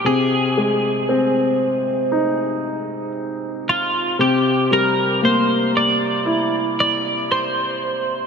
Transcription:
0.05 4.14 C3 soft
0.05 3.12 G#4 medium
0.57 2.60 G#3 soft
1.09 3.11 C4 soft
2.12 4.14 D#4 soft
3.69 4.16 F4 medium
4.19 8.27 C3 soft
4.19 4.73 G4 medium
4.71 6.73 G3 soft
4.71 5.20 A#4 medium
5.22 7.25 A#3 soft
5.22 5.72 C5 medium
5.77 6.75 D5 medium
6.25 8.27 E4 soft
6.80 7.31 D5 medium
7.32 8.27 C5 medium

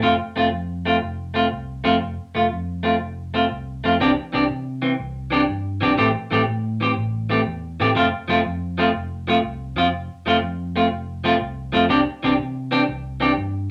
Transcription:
0.02 0.18 F1 loud
0.02 0.13 A3 medium
0.02 0.13 C4 medium
0.02 0.13 F4 medium
0.36 0.52 F1 medium
0.36 0.46 A3 medium
0.36 0.46 C4 medium
0.36 0.47 F4 medium
0.52 0.98 F2 medium
0.85 0.96 A3 medium
0.85 0.96 C4 medium
0.85 0.97 F4 medium
1.02 1.48 F1 medium
1.34 1.45 A3 medium
1.34 1.45 C4 medium
1.34 1.46 F4 medium
1.52 1.83 C2 medium
1.84 2.01 F2 medium
1.84 1.95 A3 medium
1.84 1.95 C4 medium
1.84 1.95 F4 medium
2.02 2.17 F1 loud
2.35 2.51 F1 medium
2.35 2.45 A3 medium
2.35 2.46 F4 medium
2.35 muted clean electric guitar stroke medium
2.52 2.97 F2 medium
2.83 2.94 A3 medium
2.83 2.94 C4 medium
2.83 2.95 F4 medium
3.01 3.47 F1 medium
3.34 3.44 A3 medium
3.34 3.44 C4 medium
3.34 3.45 F4 medium
3.51 3.81 C2 medium
3.84 3.99 F2 medium
3.84 3.94 A3 medium
3.84 3.94 C4 medium
3.84 3.95 F4 medium
4.00 4.16 C2 loud
4.00 4.10 E3 medium
4.00 4.10 C4 medium
4.00 4.11 D4 medium
4.00 4.11 G4 medium
4.33 4.49 C2 medium
4.33 4.43 E3 medium
4.33 4.43 C4 medium
4.33 4.44 D4 medium
4.33 4.44 G4 medium
4.50 4.95 C3 medium
4.82 4.92 E3 medium
4.82 4.92 C4 medium
5.00 5.45 C2 medium
5.30 5.41 E3 medium
5.30 5.42 C4 medium
5.30 5.42 D4 medium
5.30 5.42 G4 medium
5.48 5.79 G2 medium
5.81 5.96 B1 medium
5.81 5.91 E3 medium
5.81 5.92 C4 medium
5.81 5.92 D4 medium
5.81 5.92 G4 medium
5.98 6.13 A1 medium
5.98 6.08 E3 medium
5.98 6.08 A3 medium
5.98 6.08 C4 medium
5.98 6.08 G4 medium
6.31 6.46 A1 medium
6.31 6.41 E3 medium
6.31 6.41 A3 medium
6.31 6.41 C4 medium
6.31 6.42 G4 medium
6.47 6.93 A2 medium
6.81 6.90 E3 medium
6.81 6.91 C4 medium
6.81 6.91 G4 medium
6.81 muted clean electric guitar stroke medium
6.97 7.42 A1 medium
7.30 7.39 E3 medium
7.30 7.40 A3 medium
7.30 7.40 C4 medium
7.30 7.40 G4 medium
7.46 7.77 E2 medium
7.79 7.94 A2 medium
7.79 7.89 E3 medium
7.79 7.90 A3 medium
7.79 7.90 C4 medium
7.79 7.90 G4 medium
7.95 8.10 F1 loud
7.95 8.05 F3 medium
7.95 8.06 A3 medium
7.95 8.06 C4 medium
7.95 8.06 F4 medium
8.28 8.44 F1 medium
8.28 8.38 F3 medium
8.28 8.39 A3 medium
8.28 8.39 C4 medium
8.28 8.39 F4 medium
8.45 8.90 F2 medium
8.78 8.88 F3 medium
8.78 8.88 A3 medium
8.78 8.88 C4 medium
8.78 8.88 F4 medium
8.95 9.40 F1 loud
9.27 9.37 F3 medium
9.27 9.38 A3 medium
9.27 9.38 C4 medium
9.27 9.38 F4 medium
9.43 9.73 C2 medium
9.75 9.91 F2 medium
9.75 9.86 F3 medium
9.75 9.87 C4 medium
9.75 9.87 F4 medium
9.93 10.08 F1 medium
10.26 10.41 F1 medium
10.26 10.36 F3 medium
10.26 10.36 A3 medium
10.26 10.36 C4 medium
10.26 10.36 F4 medium
10.42 10.88 F2 medium
10.76 10.85 A3 medium
10.76 10.85 C4 medium
10.76 10.86 F4 medium
10.91 11.37 F1 medium
11.24 11.34 F3 medium
11.24 11.34 A3 medium
11.24 11.34 C4 medium
11.24 11.35 F4 medium
11.41 11.71 C2 medium
11.72 11.89 F2 medium
11.72 11.83 F3 medium
11.72 11.83 A3 medium
11.72 11.83 C4 medium
11.72 11.84 F4 medium
11.89 12.05 C2 loud
11.89 12.00 C4 medium
11.89 12.00 D4 medium
11.89 12.00 G4 medium
11.89 muted clean electric guitar stroke medium
12.23 12.38 C2 medium
12.23 12.33 E3 medium
12.23 12.33 C4 medium
12.23 12.33 D4 medium
12.23 12.34 G4 medium
12.39 12.84 C3 medium
12.71 12.81 E3 medium
12.71 12.82 C4 medium
12.71 12.82 D4 medium
12.71 12.82 G4 medium
12.88 13.34 C2 loud
13.20 13.31 E3 medium
13.20 13.31 C4 medium
13.20 13.31 D4 medium
13.20 13.32 G4 medium
13.37 13.68 G2 medium

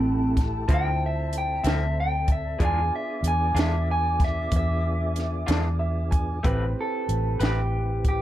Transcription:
0.00 0.65 A1 medium
0.00 0.64 A3 medium
0.00 0.67 A3 medium
0.00 0.36 C4 medium
0.00 0.67 E4 medium
0.00 0.64 G4 soft
0.00 0.67 G4 medium
0.00 0.66 A4 medium
0.00 0.64 B4 medium
0.00 0.66 G5 medium
0.00 2.56 A5 medium
0.00 0.67 B5 medium
0.37 kick medium
0.37 snare soft
0.37 closed hi-hat medium
0.68 1.61 D2 medium
0.68 0.88 D3 medium
0.68 0.88 F3 medium
0.68 2.59 C4 medium
0.68 0.88 C4 medium
0.68 2.56 E4 soft
0.68 0.89 E4 medium
0.68 2.56 F4 soft
0.68 2.59 A4 medium
0.68 2.56 C5 medium
0.68 6.40 D5 medium
0.68 2.58 E5 medium
0.68 kick medium
0.68 closed hi-hat medium
0.74 1.02 G5 loud
1.06 1.34 E5 medium
1.33 closed hi-hat medium
1.38 1.66 G5 medium
1.64 2.56 D2 medium
1.64 1.84 D3 medium
1.64 1.84 F3 medium
1.64 1.84 C4 medium
1.64 1.83 E4 medium
1.64 snare loud
1.64 closed hi-hat medium
1.70 1.98 E5 medium
2.00 2.29 G5 medium
2.28 kick medium
2.28 closed hi-hat medium
2.32 2.61 E5 medium
2.57 2.89 E2 medium
2.57 2.79 E3 medium
2.57 2.79 G#3 medium
2.57 6.39 B3 medium
2.57 6.39 D4 medium
2.57 2.80 D4 medium
2.57 6.40 F4 medium
2.57 6.39 G#4 medium
2.57 6.40 G#4 medium
2.57 6.40 D5 medium
2.57 6.40 G#5 medium
2.57 6.40 D6 medium
2.57 kick loud
2.57 closed hi-hat medium
2.62 2.80 F4 medium
2.62 2.93 G#5 loud
2.96 3.25 E5 medium
3.23 3.53 E2 medium
3.23 closed hi-hat medium
3.28 3.57 G#5 medium
3.55 4.47 E2 medium
3.55 3.75 E3 medium
3.55 3.75 G#3 medium
3.55 3.75 D4 medium
3.55 3.75 F4 medium
3.55 closed hi-hat medium
3.59 3.89 E5 medium
3.59 snare loud
3.91 4.21 G#5 medium
4.20 kick medium
4.20 snare soft
4.20 closed hi-hat medium
4.24 4.53 E5 medium
4.52 5.44 E2 medium
4.52 kick loud
4.52 closed hi-hat medium
4.56 6.42 E5 loud
5.16 snare soft
5.16 closed hi-hat medium
5.47 6.40 E2 medium
5.47 5.67 E3 medium
5.47 5.67 G#3 medium
5.47 5.67 D4 medium
5.47 5.66 F4 medium
5.47 closed hi-hat medium
5.51 snare loud
5.79 6.09 E5 medium
6.11 6.41 G#5 medium
6.11 kick medium
6.11 closed hi-hat medium
6.43 6.74 A1 medium
6.43 6.63 A3 medium
6.43 8.22 C4 medium
6.43 6.63 C4 medium
6.43 8.22 E4 medium
6.43 8.22 G4 medium
6.43 6.64 G4 medium
6.43 8.22 B4 medium
6.43 6.64 B4 medium
6.43 kick loud
6.43 closed hi-hat medium
6.81 7.41 A4 medium
7.09 7.38 A1 medium
7.09 closed hi-hat medium
7.40 8.22 A1 medium
7.40 7.60 A3 soft
7.40 7.60 C4 medium
7.40 7.60 G4 medium
7.40 7.59 B4 medium
7.40 snare medium
7.40 closed hi-hat medium
7.45 8.05 G4 medium
8.05 8.22 G4 medium
8.05 kick medium
8.05 closed hi-hat medium

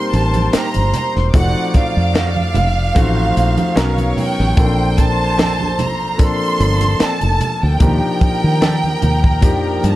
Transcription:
0.00 1.35 G3 medium
0.00 1.36 A#3 medium
0.00 1.34 C4 medium
0.00 1.34 D#4 medium
0.00 1.35 A#4 medium
0.00 1.30 C5 medium
0.00 0.11 C6 loud
0.00 1.30 C6 loud
0.13 0.48 A1 medium
0.13 0.54 A5 loud
0.13 closed hi-hat medium
0.13 muted conga soft
0.34 closed hi-hat medium
0.34 high conga medium
0.53 0.67 A#3 medium
0.53 0.67 D#4 medium
0.53 0.67 G4 medium
0.53 0.92 A#5 loud
0.53 muted fingered electric bass stroke soft
0.53 snare loud
0.53 closed hi-hat loud
0.53 muted conga soft
0.74 0.92 G1 medium
0.74 closed hi-hat medium
0.74 high conga medium
0.93 1.14 A#5 medium
0.93 closed hi-hat medium
0.93 muted conga soft
0.93 low conga medium
1.16 1.32 E1 medium
1.16 snare soft
1.33 1.53 F1 loud
1.33 2.81 F3 medium
1.33 2.81 A3 medium
1.33 2.81 C4 medium
1.33 2.82 D#4 medium
1.33 2.82 F#4 medium
1.33 2.92 D5 medium
1.33 1.73 F#5 loud
1.33 2.92 D6 loud
1.33 kick loud
1.33 closed hi-hat loud
1.74 4.18 F5 loud
1.74 muted fingered electric bass stroke soft
1.74 kick medium
1.74 snare soft
1.74 closed hi-hat medium
1.74 high conga medium
1.97 2.58 F2 loud
2.14 2.28 A3 medium
2.14 2.29 D#4 medium
2.14 2.29 F#4 loud
2.14 snare loud
2.14 closed hi-hat medium
2.14 muted conga soft
2.14 high conga medium
2.36 high conga medium
2.54 2.91 F1 medium
2.54 closed hi-hat medium
2.54 muted conga soft
2.54 low conga medium
2.95 3.31 A1 loud
2.95 3.76 F3 loud
2.95 3.76 A3 medium
2.95 3.76 C4 medium
2.95 3.75 D#4 medium
2.95 3.77 F#4 loud
2.95 3.75 C5 medium
2.95 3.75 C6 medium
2.95 kick medium
2.95 closed hi-hat loud
3.37 3.56 A#1 medium
3.37 closed hi-hat medium
3.58 closed hi-hat medium
3.58 high conga medium
3.75 4.12 B1 loud
3.75 4.50 F#3 loud
3.75 4.50 B3 medium
3.75 3.90 C#4 medium
3.75 4.50 C#4 medium
3.75 3.90 D#4 medium
3.75 4.50 D#4 medium
3.75 4.50 A#4 loud
3.75 3.90 A#4 medium
3.75 4.55 C#5 medium
3.75 4.55 C#6 medium
3.75 snare loud
3.75 closed hi-hat loud
3.75 muted conga soft
3.98 closed hi-hat medium
3.98 high conga medium
4.17 4.99 G5 medium
4.17 open hi-hat medium
4.17 muted conga soft
4.17 low conga medium
4.40 4.55 A1 loud
4.40 snare soft
4.56 6.55 A#1 loud
4.56 6.04 F3 medium
4.56 6.04 A#3 medium
4.56 6.04 C4 medium
4.56 4.64 C#4 medium
4.56 6.05 A4 medium
4.56 6.16 C5 medium
4.56 6.16 C6 loud
4.56 kick loud
4.56 closed hi-hat loud
4.56 muted conga soft
4.64 6.08 D4 medium
4.98 5.79 A5 loud
4.98 kick medium
4.98 closed hi-hat medium
4.98 high conga medium
5.38 5.51 C4 loud
5.38 5.52 D4 medium
5.38 5.52 A4 loud
5.38 snare loud
5.38 closed hi-hat medium
5.38 muted conga soft
5.38 high conga medium
5.60 high conga medium
5.79 6.20 A#5 medium
5.79 closed hi-hat medium
5.79 muted conga soft
5.79 low conga medium
6.18 7.66 F3 medium
6.18 7.66 A#3 medium
6.18 7.66 C4 medium
6.18 7.66 D4 medium
6.18 7.66 A4 medium
6.18 7.77 A4 medium
6.18 7.77 A5 loud
6.18 kick loud
6.18 closed hi-hat loud
6.22 7.01 C6 loud
6.60 6.95 G1 loud
6.60 closed hi-hat medium
6.60 muted conga soft
6.81 closed hi-hat medium
6.81 high conga medium
6.99 7.13 C4 medium
6.99 7.14 D4 medium
6.99 7.14 A4 medium
6.99 7.63 A5 loud
6.99 muted fingered electric bass stroke soft
6.99 snare loud
6.99 closed hi-hat loud
6.99 muted conga soft
7.21 7.38 F1 medium
7.21 closed hi-hat medium
7.21 high conga medium
7.41 closed hi-hat medium
7.41 muted conga soft
7.41 low conga medium
7.63 7.79 D2 loud
7.63 9.88 G5 medium
7.80 8.00 D#2 loud
7.80 9.28 F3 medium
7.80 9.28 A#3 medium
7.80 9.28 D4 medium
7.80 9.28 D#4 medium
7.80 9.28 G4 medium
7.80 9.96 A#4 loud
7.80 9.96 A#5 loud
7.80 kick loud
7.80 closed hi-hat loud
7.80 low conga medium
8.21 muted fingered electric bass stroke medium
8.21 kick medium
8.21 closed hi-hat medium
8.21 high conga medium
8.44 8.95 D#3 medium
8.61 8.75 D4 medium
8.61 8.75 G4 medium
8.61 8.75 A4 medium
8.61 snare loud
8.61 closed hi-hat medium
8.61 muted conga soft
8.61 high conga medium
8.84 high conga medium
9.02 9.43 D#2 medium
9.02 closed hi-hat medium
9.02 low conga medium
9.24 kick medium
9.41 9.78 F2 loud
9.41 9.96 F3 medium
9.41 9.96 A#3 medium
9.41 9.96 D4 medium
9.41 9.96 D#4 medium
9.41 9.96 G4 loud
9.41 kick loud
9.41 closed hi-hat loud
9.41 muted conga soft
9.83 9.96 G2 loud
9.83 closed hi-hat medium
9.83 muted conga soft
9.88 9.96 A5 medium

